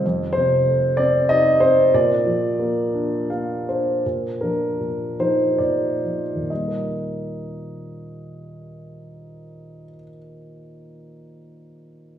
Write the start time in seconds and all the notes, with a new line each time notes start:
0.05 F2
0.33 C5
0.37 C3
0.67 A3
0.97 C4 D5
1.29 D#4 D#5
1.60 C4 C5
1.94 A#2 F4 D5
2.26 F3
2.59 A#3
2.94 D4
3.30 A#3 F5
3.69 D4 C5
4.06 A#2
4.41 F3 D4 A#4
4.80 A#2
5.20 F3 D#4 C5
5.58 A#2 F4 D5
6.04 F3
6.35 D#2
6.42 A#2
6.48 G3 D#5
6.55 A#3
6.61 D#4
6.68 A#4